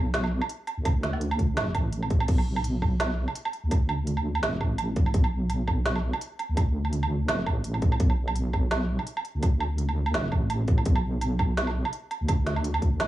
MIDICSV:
0, 0, Header, 1, 3, 480
1, 0, Start_track
1, 0, Key_signature, 2, "minor"
1, 0, Tempo, 357143
1, 1152, Time_signature, 4, 2, 24, 8
1, 17573, End_track
2, 0, Start_track
2, 0, Title_t, "Wobble bass"
2, 0, Program_c, 0, 39
2, 0, Note_on_c, 0, 35, 99
2, 548, Note_off_c, 0, 35, 0
2, 1044, Note_on_c, 0, 38, 83
2, 2108, Note_on_c, 0, 30, 101
2, 2128, Note_off_c, 0, 38, 0
2, 2351, Note_on_c, 0, 33, 107
2, 2371, Note_off_c, 0, 30, 0
2, 3058, Note_off_c, 0, 33, 0
2, 3075, Note_on_c, 0, 35, 99
2, 4390, Note_off_c, 0, 35, 0
2, 4890, Note_on_c, 0, 38, 84
2, 5954, Note_on_c, 0, 30, 100
2, 5974, Note_off_c, 0, 38, 0
2, 6193, Note_on_c, 0, 33, 107
2, 6213, Note_off_c, 0, 30, 0
2, 6899, Note_off_c, 0, 33, 0
2, 6912, Note_on_c, 0, 35, 100
2, 8229, Note_off_c, 0, 35, 0
2, 8729, Note_on_c, 0, 38, 87
2, 9796, Note_on_c, 0, 30, 96
2, 9816, Note_off_c, 0, 38, 0
2, 10034, Note_on_c, 0, 33, 104
2, 10054, Note_off_c, 0, 30, 0
2, 10739, Note_off_c, 0, 33, 0
2, 10755, Note_on_c, 0, 35, 101
2, 12071, Note_off_c, 0, 35, 0
2, 12568, Note_on_c, 0, 38, 87
2, 13636, Note_on_c, 0, 30, 98
2, 13657, Note_off_c, 0, 38, 0
2, 13875, Note_on_c, 0, 33, 103
2, 13895, Note_off_c, 0, 30, 0
2, 14580, Note_off_c, 0, 33, 0
2, 14596, Note_on_c, 0, 35, 100
2, 15911, Note_off_c, 0, 35, 0
2, 16413, Note_on_c, 0, 38, 84
2, 17476, Note_on_c, 0, 30, 99
2, 17496, Note_off_c, 0, 38, 0
2, 17573, Note_off_c, 0, 30, 0
2, 17573, End_track
3, 0, Start_track
3, 0, Title_t, "Drums"
3, 185, Note_on_c, 9, 38, 114
3, 185, Note_on_c, 9, 42, 78
3, 318, Note_on_c, 9, 77, 57
3, 320, Note_off_c, 9, 38, 0
3, 320, Note_off_c, 9, 42, 0
3, 452, Note_off_c, 9, 77, 0
3, 559, Note_on_c, 9, 77, 84
3, 666, Note_on_c, 9, 42, 67
3, 694, Note_off_c, 9, 77, 0
3, 800, Note_off_c, 9, 42, 0
3, 905, Note_on_c, 9, 42, 37
3, 905, Note_on_c, 9, 77, 58
3, 1040, Note_off_c, 9, 42, 0
3, 1040, Note_off_c, 9, 77, 0
3, 1147, Note_on_c, 9, 36, 112
3, 1147, Note_on_c, 9, 42, 81
3, 1147, Note_on_c, 9, 77, 84
3, 1282, Note_off_c, 9, 36, 0
3, 1282, Note_off_c, 9, 42, 0
3, 1282, Note_off_c, 9, 77, 0
3, 1389, Note_on_c, 9, 38, 62
3, 1389, Note_on_c, 9, 42, 39
3, 1523, Note_off_c, 9, 38, 0
3, 1523, Note_off_c, 9, 42, 0
3, 1523, Note_on_c, 9, 77, 55
3, 1628, Note_on_c, 9, 42, 70
3, 1657, Note_off_c, 9, 77, 0
3, 1763, Note_off_c, 9, 42, 0
3, 1765, Note_on_c, 9, 77, 87
3, 1869, Note_on_c, 9, 36, 61
3, 1869, Note_on_c, 9, 42, 38
3, 1899, Note_off_c, 9, 77, 0
3, 2003, Note_off_c, 9, 36, 0
3, 2003, Note_off_c, 9, 42, 0
3, 2109, Note_on_c, 9, 38, 117
3, 2109, Note_on_c, 9, 42, 81
3, 2109, Note_on_c, 9, 77, 57
3, 2244, Note_off_c, 9, 38, 0
3, 2244, Note_off_c, 9, 42, 0
3, 2244, Note_off_c, 9, 77, 0
3, 2347, Note_on_c, 9, 42, 39
3, 2347, Note_on_c, 9, 77, 85
3, 2349, Note_on_c, 9, 36, 60
3, 2482, Note_off_c, 9, 42, 0
3, 2482, Note_off_c, 9, 77, 0
3, 2483, Note_off_c, 9, 36, 0
3, 2588, Note_on_c, 9, 42, 71
3, 2723, Note_off_c, 9, 42, 0
3, 2723, Note_on_c, 9, 77, 55
3, 2828, Note_on_c, 9, 42, 39
3, 2830, Note_on_c, 9, 36, 107
3, 2857, Note_off_c, 9, 77, 0
3, 2962, Note_off_c, 9, 42, 0
3, 2963, Note_on_c, 9, 77, 88
3, 2965, Note_off_c, 9, 36, 0
3, 3068, Note_on_c, 9, 42, 84
3, 3068, Note_on_c, 9, 49, 78
3, 3071, Note_on_c, 9, 36, 122
3, 3097, Note_off_c, 9, 77, 0
3, 3202, Note_off_c, 9, 42, 0
3, 3202, Note_off_c, 9, 49, 0
3, 3203, Note_on_c, 9, 77, 55
3, 3206, Note_off_c, 9, 36, 0
3, 3337, Note_off_c, 9, 77, 0
3, 3447, Note_on_c, 9, 77, 83
3, 3552, Note_on_c, 9, 42, 73
3, 3581, Note_off_c, 9, 77, 0
3, 3686, Note_off_c, 9, 42, 0
3, 3792, Note_on_c, 9, 36, 62
3, 3792, Note_on_c, 9, 77, 57
3, 3926, Note_off_c, 9, 36, 0
3, 3926, Note_off_c, 9, 77, 0
3, 4031, Note_on_c, 9, 38, 118
3, 4031, Note_on_c, 9, 42, 84
3, 4031, Note_on_c, 9, 77, 80
3, 4165, Note_off_c, 9, 38, 0
3, 4165, Note_off_c, 9, 42, 0
3, 4165, Note_off_c, 9, 77, 0
3, 4406, Note_on_c, 9, 77, 55
3, 4508, Note_on_c, 9, 42, 73
3, 4540, Note_off_c, 9, 77, 0
3, 4641, Note_on_c, 9, 77, 84
3, 4642, Note_off_c, 9, 42, 0
3, 4747, Note_on_c, 9, 42, 41
3, 4775, Note_off_c, 9, 77, 0
3, 4881, Note_off_c, 9, 42, 0
3, 4988, Note_on_c, 9, 42, 85
3, 4988, Note_on_c, 9, 77, 55
3, 4991, Note_on_c, 9, 36, 121
3, 5123, Note_off_c, 9, 42, 0
3, 5123, Note_off_c, 9, 77, 0
3, 5126, Note_off_c, 9, 36, 0
3, 5226, Note_on_c, 9, 77, 85
3, 5361, Note_off_c, 9, 77, 0
3, 5470, Note_on_c, 9, 42, 71
3, 5604, Note_off_c, 9, 42, 0
3, 5604, Note_on_c, 9, 77, 57
3, 5738, Note_off_c, 9, 77, 0
3, 5847, Note_on_c, 9, 77, 80
3, 5951, Note_on_c, 9, 38, 121
3, 5951, Note_on_c, 9, 42, 83
3, 5981, Note_off_c, 9, 77, 0
3, 6085, Note_off_c, 9, 38, 0
3, 6085, Note_off_c, 9, 42, 0
3, 6190, Note_on_c, 9, 36, 64
3, 6190, Note_on_c, 9, 77, 57
3, 6325, Note_off_c, 9, 36, 0
3, 6325, Note_off_c, 9, 77, 0
3, 6427, Note_on_c, 9, 42, 73
3, 6427, Note_on_c, 9, 77, 84
3, 6561, Note_off_c, 9, 42, 0
3, 6561, Note_off_c, 9, 77, 0
3, 6666, Note_on_c, 9, 42, 41
3, 6671, Note_on_c, 9, 36, 113
3, 6801, Note_off_c, 9, 42, 0
3, 6802, Note_on_c, 9, 77, 54
3, 6805, Note_off_c, 9, 36, 0
3, 6908, Note_on_c, 9, 42, 86
3, 6910, Note_on_c, 9, 36, 127
3, 6937, Note_off_c, 9, 77, 0
3, 7041, Note_on_c, 9, 77, 79
3, 7042, Note_off_c, 9, 42, 0
3, 7044, Note_off_c, 9, 36, 0
3, 7176, Note_off_c, 9, 77, 0
3, 7387, Note_on_c, 9, 42, 71
3, 7387, Note_on_c, 9, 77, 53
3, 7522, Note_off_c, 9, 42, 0
3, 7522, Note_off_c, 9, 77, 0
3, 7628, Note_on_c, 9, 77, 78
3, 7631, Note_on_c, 9, 36, 66
3, 7762, Note_off_c, 9, 77, 0
3, 7765, Note_off_c, 9, 36, 0
3, 7870, Note_on_c, 9, 38, 124
3, 7870, Note_on_c, 9, 42, 81
3, 8004, Note_off_c, 9, 38, 0
3, 8004, Note_off_c, 9, 42, 0
3, 8005, Note_on_c, 9, 77, 54
3, 8139, Note_off_c, 9, 77, 0
3, 8244, Note_on_c, 9, 77, 80
3, 8351, Note_on_c, 9, 42, 72
3, 8379, Note_off_c, 9, 77, 0
3, 8485, Note_off_c, 9, 42, 0
3, 8593, Note_on_c, 9, 42, 38
3, 8593, Note_on_c, 9, 77, 54
3, 8727, Note_off_c, 9, 42, 0
3, 8727, Note_off_c, 9, 77, 0
3, 8832, Note_on_c, 9, 36, 126
3, 8832, Note_on_c, 9, 42, 78
3, 8832, Note_on_c, 9, 77, 76
3, 8966, Note_off_c, 9, 36, 0
3, 8967, Note_off_c, 9, 42, 0
3, 8967, Note_off_c, 9, 77, 0
3, 9205, Note_on_c, 9, 77, 51
3, 9312, Note_on_c, 9, 42, 69
3, 9340, Note_off_c, 9, 77, 0
3, 9446, Note_off_c, 9, 42, 0
3, 9448, Note_on_c, 9, 77, 78
3, 9583, Note_off_c, 9, 77, 0
3, 9790, Note_on_c, 9, 38, 127
3, 9790, Note_on_c, 9, 42, 78
3, 9790, Note_on_c, 9, 77, 50
3, 9925, Note_off_c, 9, 38, 0
3, 9925, Note_off_c, 9, 42, 0
3, 9925, Note_off_c, 9, 77, 0
3, 10032, Note_on_c, 9, 36, 65
3, 10033, Note_on_c, 9, 77, 79
3, 10166, Note_off_c, 9, 36, 0
3, 10168, Note_off_c, 9, 77, 0
3, 10271, Note_on_c, 9, 42, 70
3, 10404, Note_on_c, 9, 77, 50
3, 10405, Note_off_c, 9, 42, 0
3, 10509, Note_on_c, 9, 42, 37
3, 10513, Note_on_c, 9, 36, 113
3, 10538, Note_off_c, 9, 77, 0
3, 10644, Note_off_c, 9, 42, 0
3, 10645, Note_on_c, 9, 77, 77
3, 10647, Note_off_c, 9, 36, 0
3, 10750, Note_on_c, 9, 42, 76
3, 10753, Note_on_c, 9, 36, 124
3, 10779, Note_off_c, 9, 77, 0
3, 10882, Note_on_c, 9, 77, 53
3, 10884, Note_off_c, 9, 42, 0
3, 10887, Note_off_c, 9, 36, 0
3, 11017, Note_off_c, 9, 77, 0
3, 11123, Note_on_c, 9, 77, 79
3, 11229, Note_on_c, 9, 42, 67
3, 11257, Note_off_c, 9, 77, 0
3, 11363, Note_off_c, 9, 42, 0
3, 11468, Note_on_c, 9, 77, 53
3, 11472, Note_on_c, 9, 36, 64
3, 11603, Note_off_c, 9, 77, 0
3, 11607, Note_off_c, 9, 36, 0
3, 11706, Note_on_c, 9, 38, 121
3, 11706, Note_on_c, 9, 42, 75
3, 11706, Note_on_c, 9, 77, 75
3, 11841, Note_off_c, 9, 38, 0
3, 11841, Note_off_c, 9, 42, 0
3, 11841, Note_off_c, 9, 77, 0
3, 12082, Note_on_c, 9, 77, 52
3, 12186, Note_on_c, 9, 42, 66
3, 12217, Note_off_c, 9, 77, 0
3, 12321, Note_off_c, 9, 42, 0
3, 12323, Note_on_c, 9, 77, 78
3, 12429, Note_on_c, 9, 42, 37
3, 12457, Note_off_c, 9, 77, 0
3, 12563, Note_off_c, 9, 42, 0
3, 12668, Note_on_c, 9, 42, 77
3, 12668, Note_on_c, 9, 77, 52
3, 12672, Note_on_c, 9, 36, 117
3, 12803, Note_off_c, 9, 42, 0
3, 12803, Note_off_c, 9, 77, 0
3, 12807, Note_off_c, 9, 36, 0
3, 12908, Note_on_c, 9, 77, 83
3, 13042, Note_off_c, 9, 77, 0
3, 13147, Note_on_c, 9, 42, 65
3, 13282, Note_off_c, 9, 42, 0
3, 13287, Note_on_c, 9, 77, 55
3, 13421, Note_off_c, 9, 77, 0
3, 13521, Note_on_c, 9, 77, 78
3, 13630, Note_on_c, 9, 38, 112
3, 13630, Note_on_c, 9, 42, 76
3, 13655, Note_off_c, 9, 77, 0
3, 13764, Note_off_c, 9, 38, 0
3, 13764, Note_off_c, 9, 42, 0
3, 13866, Note_on_c, 9, 77, 54
3, 13873, Note_on_c, 9, 36, 62
3, 14000, Note_off_c, 9, 77, 0
3, 14008, Note_off_c, 9, 36, 0
3, 14110, Note_on_c, 9, 42, 64
3, 14110, Note_on_c, 9, 77, 79
3, 14244, Note_off_c, 9, 42, 0
3, 14244, Note_off_c, 9, 77, 0
3, 14348, Note_on_c, 9, 42, 36
3, 14353, Note_on_c, 9, 36, 111
3, 14483, Note_off_c, 9, 42, 0
3, 14484, Note_on_c, 9, 77, 53
3, 14488, Note_off_c, 9, 36, 0
3, 14588, Note_on_c, 9, 42, 76
3, 14594, Note_on_c, 9, 36, 119
3, 14619, Note_off_c, 9, 77, 0
3, 14722, Note_off_c, 9, 42, 0
3, 14723, Note_on_c, 9, 77, 81
3, 14728, Note_off_c, 9, 36, 0
3, 14857, Note_off_c, 9, 77, 0
3, 15070, Note_on_c, 9, 42, 67
3, 15070, Note_on_c, 9, 77, 58
3, 15205, Note_off_c, 9, 42, 0
3, 15205, Note_off_c, 9, 77, 0
3, 15310, Note_on_c, 9, 77, 85
3, 15314, Note_on_c, 9, 36, 62
3, 15444, Note_off_c, 9, 77, 0
3, 15448, Note_off_c, 9, 36, 0
3, 15555, Note_on_c, 9, 38, 114
3, 15555, Note_on_c, 9, 42, 78
3, 15687, Note_on_c, 9, 77, 57
3, 15689, Note_off_c, 9, 38, 0
3, 15689, Note_off_c, 9, 42, 0
3, 15822, Note_off_c, 9, 77, 0
3, 15928, Note_on_c, 9, 77, 82
3, 16032, Note_on_c, 9, 42, 67
3, 16063, Note_off_c, 9, 77, 0
3, 16166, Note_off_c, 9, 42, 0
3, 16275, Note_on_c, 9, 42, 36
3, 16275, Note_on_c, 9, 77, 57
3, 16409, Note_off_c, 9, 42, 0
3, 16409, Note_off_c, 9, 77, 0
3, 16511, Note_on_c, 9, 42, 82
3, 16511, Note_on_c, 9, 77, 83
3, 16515, Note_on_c, 9, 36, 120
3, 16645, Note_off_c, 9, 42, 0
3, 16645, Note_off_c, 9, 77, 0
3, 16650, Note_off_c, 9, 36, 0
3, 16753, Note_on_c, 9, 38, 60
3, 16753, Note_on_c, 9, 42, 38
3, 16886, Note_on_c, 9, 77, 56
3, 16887, Note_off_c, 9, 38, 0
3, 16887, Note_off_c, 9, 42, 0
3, 16994, Note_on_c, 9, 42, 70
3, 17021, Note_off_c, 9, 77, 0
3, 17126, Note_on_c, 9, 77, 89
3, 17128, Note_off_c, 9, 42, 0
3, 17233, Note_on_c, 9, 42, 39
3, 17234, Note_on_c, 9, 36, 62
3, 17260, Note_off_c, 9, 77, 0
3, 17368, Note_off_c, 9, 36, 0
3, 17368, Note_off_c, 9, 42, 0
3, 17472, Note_on_c, 9, 38, 118
3, 17472, Note_on_c, 9, 42, 80
3, 17472, Note_on_c, 9, 77, 57
3, 17573, Note_off_c, 9, 38, 0
3, 17573, Note_off_c, 9, 42, 0
3, 17573, Note_off_c, 9, 77, 0
3, 17573, End_track
0, 0, End_of_file